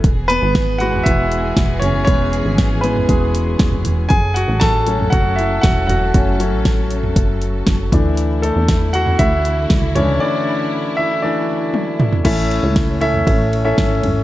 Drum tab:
CC |----------------|----------------|----------------|----------------|
RD |----------------|----------------|----------------|----------------|
HH |x-x-x-x-x-x-x-x-|x-x-x-x-x-x-x-x-|x-x-x-x-x-x-x-x-|x-x-x-x-x-x-x-x-|
SD |----o-------o---|----o-------o---|----o-------o---|----o-------o---|
T1 |----------------|----------------|----------------|----------------|
T2 |----------------|----------------|----------------|----------------|
FT |-------o------o-|-------o-----oo-|-------o------o-|-------o------o-|
BD |o---o---o---o---|o---o---o---o---|o---o---o---o---|o---o---o---o-o-|

CC |----------------|----------------|x---------------|
RD |----------------|----------------|x-x-x-x-x-x-x-x-|
HH |x-x-x-x-x-x-x-x-|----------------|----------------|
SD |----o-------o---|----------------|----o-------o---|
T1 |----------------|------------o---|----------------|
T2 |----------------|--------------o-|----------------|
FT |-------o------o-|---------------o|-------o------o-|
BD |----o---o---o---|----------------|o---o---o---o---|